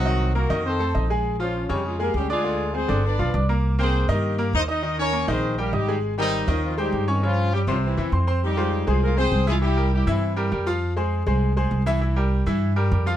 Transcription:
<<
  \new Staff \with { instrumentName = "Grand piano" } { \time 4/4 \key f \minor \tempo 4 = 201 <ees ees' ees''>4 <bes bes' bes''>8 <ees ees' ees''>4 <a a' a''>8 <ees' ees'' ees'''>8 <aes aes' aes''>8~ | <aes aes' aes''>8 <f f' f''>4 <des des' des''>4 <aes aes' aes''>4 <d' d'' d'''>8 | <d d' d''>4 <aes aes' aes''>8 <d d' d''>4 <f f' f''>8 <d' d'' d'''>8 <bes bes' bes''>8~ | <bes bes' bes''>8 <bes bes' g''>4 <ees ees' ees''>4 <bes bes' bes''>4 <ees' ees'' ees'''>8 |
<ees ees' ees''>4 <bes bes' bes''>8 <ees ees' ees''>4 <g g' g''>8 <ees' ees'' ees'''>8 <aes aes' aes''>8~ | <aes aes' aes''>8 <g g' g''>4 <ees ees' ees''>4 <aes c'' g''>4 <des' des'' des'''>8 | <des des' des''>4 <g g' g''>8 <c c' c''>4 <e e' e''>8 <c' c'' c'''>8 <c' c'' c'''>8 | r8 <aes f' c''>4 <aes aes' c''>4 <aes aes' c''>4 <e e' e''>8 |
<e e' e''>8 <g g' bes'>4 <e e' e''>4 <g g' bes'>8 <g g' bes'>8 <f f' f''>8~ | <f f' f''>8 <aes aes' c''>4 <aes aes' c''>4 <aes aes' c''>4 <e e' e''>8 | <e e' e''>8 <g g' bes'>4 <e e' e''>4 <g g' bes'>8 <g g' bes'>8 <f f' f''>8 | }
  \new Staff \with { instrumentName = "Horn section" } { \time 4/4 \key f \minor <ges c' ges'>4 <bes ges' bes'>4 <c' a' c''>4. r8 | r8 <f des' f'>4 <g ees' g'>8 <aes f' aes'>8 <bes g' bes'>8 <g des' g'>8 <aes f' aes'>8~ | <aes f' aes'>4 <c' aes' c''>4 <d' b' d''>4. r8 | r8 <c' aes' c''>4 <bes g' bes'>4. <ees' c'' ees''>8 <ees' bes' ees''>8~ |
<ees' bes' ees''>8 <des' bes' des''>4 <c' aes' c''>4 <bes g' bes'>8 <g ees' g'>8. r16 | r8 <ees c' ees'>4 <f des' f'>8 <f c' f'>8 <g ees' g'>4 <ees c' ees'>8 | <f des' f'>4 <g des' g'>8 <f des' f'>8 <e c' e'>4. r8 | <g ees' g'>4. <aes f' aes'>8 <bes f' bes'>8 <c' aes' c''>4 <aes f' aes'>8 |
<g e' g'>4 <g e' g'>8 <e c' e'>4. r4 | r1 | r1 | }
  \new Staff \with { instrumentName = "Upright bass" } { \clef bass \time 4/4 \key f \minor c,4. f,4. bes,,4~ | bes,,4. f,4. d,4~ | d,4. g,,4 b,,8 c,4~ | c,4. g,4. ees,4~ |
ees,4. bes,,4. aes,,4~ | aes,,4. ees,4. g,4~ | g,4. c,4 e,8 f,4~ | f,4. c,4. c,4~ |
c,4. g,4. f,4~ | f,4. c,4. c,4~ | c,4. g,4. f,4 | }
>>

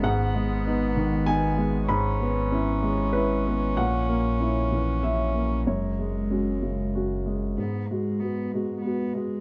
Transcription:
<<
  \new Staff \with { instrumentName = "Upright piano" } { \time 3/4 \key gis \minor \tempo 4 = 96 fis''2 gis''4 | b''2 b'4 | fis''2 e''4 | cis''2 r4 |
r2. | }
  \new Staff \with { instrumentName = "Upright piano" } { \time 3/4 \key gis \minor gis,8 gis8 <b dis'>8 dis8 <b dis'>8 gis8 | gis,8 b8 <cis' e'>8 gis8 <cis' e'>8 b8 | ais,8 ais8 <cis' e'>8 e8 <cis' e'>8 ais8 | fis,8 gis8 <cis' fis'>8 cis8 <cis' fis'>8 gis8 |
gis,8 <gis fis'>8 <b fis'>8 <gis fis'>8 <b fis'>8 <gis fis'>8 | }
  \new Staff \with { instrumentName = "Cello" } { \time 3/4 \key gis \minor b2. | cis'2.~ | cis'2. | gis2~ gis8 r8 |
b8 gis8 b8 gis8 b8 gis8 | }
  \new Staff \with { instrumentName = "Sub bass" } { \clef bass \time 3/4 \key gis \minor gis,,2.~ | gis,,2. | ais,,2. | fis,,2. |
r2. | }
>>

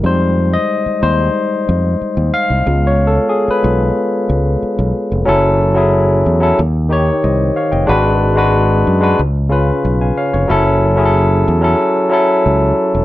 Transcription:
<<
  \new Staff \with { instrumentName = "Tine electric piano" } { \time 4/4 \key des \lydian \tempo 4 = 92 << { c''8. ees''8. c''4 r4 f''8~ | \tuplet 3/2 { f''8 des''8 a'8 aes'8 ces''4~ } ces''8. r4 r16 | \key fis \minor r2. <bis' dis''>8 <cis'' eis''>16 <dis'' g''>16~ | <dis'' g''>16 r2. <eis'' gis''>16 <cis'' eis''>16 cis''16~ |
cis''16 r2. r8. | } \\ { <g aes ees'>8 r4 <g aes ees'>8 r2 | <aes ces' f'>4. <aes ces' f'>8 r2 | <fis cis' e' a'>8. <fis cis' e' gis'>4 <fis cis' e' a'>16 r8 <dis dis' g' cis''>4~ <dis dis' g' cis''>16 r16 | <gis d' fis' b'>8. <gis d' fis' b'>4 <gis d' fis' b'>16 r8 <cis cis' eis' b'>4 r8 |
<fis cis' e' a'>8. <fis cis' e' gis' a'>4 <fis cis' e' a'>8. <fis cis' e' a'>4~ <fis cis' e' a'>16 r16 | } >> }
  \new Staff \with { instrumentName = "Fingered electric bass" } { \clef bass \time 4/4 \key des \lydian f,4 r8 ees,8 r8 f,8 r16 ees,16 r16 c,16 | des,4 r8 ces,8 r8 des,8 r16 ces,16 r16 f,,16 | \key fis \minor fis,,4. e,8 dis,4 bis,,8 r16 eis,,16 | gis,,4. fis,8 cis,4 b,,8 r16 eis,,16 |
fis,,4. e,8 r4 cis,8 r16 e,,16 | }
>>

